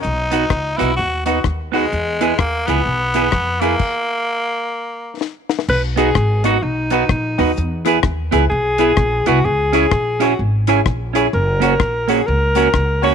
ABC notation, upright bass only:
X:1
M:4/4
L:1/8
Q:"Swing" 1/4=128
K:B
V:1 name="Upright bass" clef=bass
B,,,2 C,, B,,, D,,2 D,,2 | E,,2 D,, C,, B,,,2 ^E,,2 | z8 | B,,,2 G,,,2 B,,,2 A,,, D,, |
E,,2 D,, C,, B,,,2 A,,, =C,, | C,,2 A,,,2 G,,,2 A,,,2 | F,,,2 A,,,2 C,,2 C,,2 |]